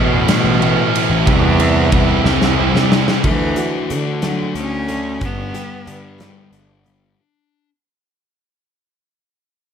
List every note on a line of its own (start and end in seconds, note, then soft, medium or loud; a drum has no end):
0.00 0.27 E2 medium
0.00 0.27 A2 medium
0.00 0.29 B2 medium
0.00 0.28 E3 medium
0.00 0.28 A3 loud
0.00 0.27 C#4 loud
0.00 0.28 E4 loud
0.28 0.60 A2 loud
0.28 0.91 B2 medium
0.28 0.60 E3 loud
0.28 0.61 A3 loud
0.28 0.59 C#4 loud
0.28 0.60 E4 loud
0.28 snare loud
0.28 ride loud
0.44 0.76 A1 loud
0.60 1.25 A2 medium
0.60 1.25 E3 loud
0.60 1.26 A3 loud
0.60 1.25 C#4 loud
0.60 1.25 E4 loud
0.60 ride medium
0.95 ride medium
1.10 1.26 A1 medium
1.25 1.58 C2 loud
1.25 2.54 E2 loud
1.25 1.58 C3 loud
1.25 1.58 E3 loud
1.25 1.58 G3 medium
1.25 1.59 C4 loud
1.25 1.59 E4 loud
1.25 kick loud
1.25 ride medium
1.59 2.21 C2 loud
1.59 1.91 C3 medium
1.59 1.92 E3 medium
1.59 1.92 G3 medium
1.59 1.93 C4 loud
1.59 1.94 E4 medium
1.59 ride medium
1.92 2.23 C3 medium
1.92 2.24 E3 medium
1.92 2.25 G3 loud
1.92 2.25 C4 loud
1.92 2.25 E4 loud
1.92 kick medium
1.92 ride medium
2.24 2.71 C2 loud
2.24 2.57 C3 loud
2.24 2.57 E3 loud
2.24 2.58 G3 loud
2.24 2.58 C4 loud
2.24 2.59 E4 loud
2.24 snare medium
2.42 snare medium
2.58 3.22 C3 medium
2.58 3.22 E3 medium
2.58 3.22 G3 loud
2.58 3.23 C4 loud
2.58 3.23 E4 loud
2.74 3.05 C2 medium
2.74 snare medium
2.92 snare loud
3.08 snare loud
3.24 3.55 D2 loud
3.24 3.56 D3 medium
3.24 3.86 E3 loud
3.24 3.56 A3 medium
3.24 3.58 D4 medium
3.24 kick medium
3.24 crash medium
3.56 3.90 D3 medium
3.56 3.89 A3 medium
3.56 3.92 D4 medium
3.56 5.21 F#4 medium
3.56 closed hi-hat medium
3.90 4.52 D3 medium
3.90 4.21 D3 medium
3.90 4.22 A3 medium
3.90 4.24 D4 medium
3.90 closed hi-hat medium
4.22 4.87 D3 medium
4.22 4.54 F#3 medium
4.22 4.88 A3 medium
4.22 4.89 D4 medium
4.22 snare loud
4.22 closed hi-hat medium
4.55 5.17 D2 medium
4.55 5.27 C#4 loud
4.55 closed hi-hat medium
4.89 5.19 D3 medium
4.89 5.20 A3 medium
4.89 7.67 D4 loud
4.89 closed hi-hat medium
5.21 5.52 G1 loud
5.21 5.52 G2 medium
5.21 5.53 D3 medium
5.21 5.54 G3 medium
5.21 kick medium
5.21 closed hi-hat medium
5.25 6.55 B3 medium
5.53 5.86 G2 medium
5.53 5.86 D3 medium
5.53 5.87 G3 medium
5.53 7.19 G4 medium
5.53 closed hi-hat medium
5.86 6.18 G2 medium
5.86 6.49 G2 medium
5.86 6.19 D3 medium
5.86 6.19 G3 medium
5.86 6.52 D4 medium
5.86 closed hi-hat medium
6.20 6.84 G2 medium
6.20 6.85 D3 medium
6.20 6.86 G3 medium
6.20 snare medium
6.20 closed hi-hat medium
6.52 7.14 G1 medium
6.52 7.19 D4 medium
6.52 closed hi-hat medium
6.84 7.16 G2 medium
6.84 7.17 D3 medium
6.84 7.17 G3 medium
6.84 7.18 B3 medium
6.84 closed hi-hat medium